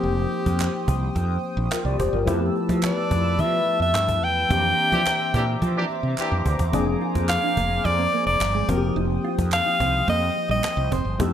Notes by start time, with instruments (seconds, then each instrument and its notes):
Already playing: tine electric piano F3 A#3 C4 D#4 G4, alto saxophone G4, analog synth pad C5 G5 D#6
0.04 fretless electric bass F1, cajon slap
0.32 cajon slap
0.46 fretless electric bass F2, cajon bass, cajon slap
0.60 cajon slap, clap
0.88 fretless electric bass C2, cajon bass
1.16 fretless electric bass F2, cajon bass, cajon slap
1.43 cajon slap
1.57 fretless electric bass A#1
1.72 tine electric piano F4 A#4, cajon slap, clap
1.85 fretless electric bass C2, tine electric piano G4 D5
1.99 fretless electric bass F1, tine electric piano G4 C5, cajon bass
2.13 fretless electric bass G1, tine electric piano F4 A#4, cajon slap
2.25 fretless electric bass F2, tine electric piano F3 A3 B3 E4 G4, analog synth pad B4 A5 E6, cajon bass
2.55 cajon slap
2.69 fretless electric bass F3, cajon bass, cajon slap
2.83 alto saxophone D5, cajon slap, clap
3.11 fretless electric bass F2, cajon bass
3.39 fretless electric bass F3, alto saxophone E5, cajon bass, cajon slap
3.67 cajon slap
3.80 fretless electric bass F2, alto saxophone E5
3.94 fretless electric bass G2, cajon slap, clap
4.08 cajon bass
4.22 fretless electric bass E2, alto saxophone G5
4.37 cajon slap
4.49 fretless electric bass F2, tine electric piano E3 A#3 C4 D4 G4, analog synth pad C5 E5 A#5 D6, cajon bass
4.79 cajon slap
4.92 horn section E3 D4 G4, fretless electric bass F3, cajon bass, cajon slap
5.07 cajon slap, clap
5.34 fretless electric bass A#2, horn section E3 D4 G4, cajon bass
5.62 fretless electric bass F3, cajon bass, cajon slap
5.76 horn section E3 D4 G4
5.90 cajon slap
6.03 fretless electric bass C3, cajon slap
6.17 horn section E3 D4 G4, cajon slap, clap
6.32 fretless electric bass F2
6.46 fretless electric bass D2, cajon bass
6.59 fretless electric bass E2, cajon bass
6.72 fretless electric bass F1, tine electric piano F3 A#3 C4 D4 G#4, clean electric guitar D4, analog synth pad G#5, cajon bass
7.01 clean electric guitar F4, cajon slap
7.15 fretless electric bass F2, muted clean electric guitar stroke, cajon bass, cajon slap
7.29 alto saxophone F5, muted clean electric guitar stroke, cajon slap, clap
7.43 clean electric guitar D4
7.57 fretless electric bass F1, clean electric guitar A#3, cajon bass
7.85 fretless electric bass F2, alto saxophone D5, muted clean electric guitar stroke, cajon bass, cajon slap
7.99 clean electric guitar C4
8.13 clean electric guitar A#3, cajon slap
8.27 fretless electric bass F1, alto saxophone D5
8.40 fretless electric bass G1, muted clean electric guitar stroke, cajon slap, clap
8.55 clean electric guitar G#3
8.68 fretless electric bass F1, tine electric piano F3 A#3 C4 D#4 F#4, clean electric guitar C4, alto saxophone A#4, analog synth pad G5 D#6, cajon bass
8.77 tine electric piano G4
8.83 cajon slap
8.96 fretless electric bass F1, clean electric guitar D#4, cajon slap
9.10 muted clean electric guitar stroke
9.25 clean electric guitar F4, cajon slap
9.38 fretless electric bass F2, cajon bass, cajon slap
9.52 alto saxophone F5, muted clean electric guitar stroke, cajon slap, clap
9.66 clean electric guitar D#4
9.80 fretless electric bass C2, clean electric guitar C4, cajon bass
10.08 fretless electric bass F2, clean electric guitar A#3, alto saxophone D#5, cajon bass, cajon slap
10.36 muted clean electric guitar stroke, cajon slap
10.49 fretless electric bass A#1, clean electric guitar G3, alto saxophone D#5
10.64 cajon slap, clap
10.77 fretless electric bass C2
10.91 fretless electric bass F1, clean electric guitar C4, alto saxophone C5, cajon bass
11.05 fretless electric bass G1, cajon slap
11.18 fretless electric bass F2, tine electric piano F3 A3 B3 E4 G4, clean electric guitar D#4, analog synth pad B4 A5 E6, cajon bass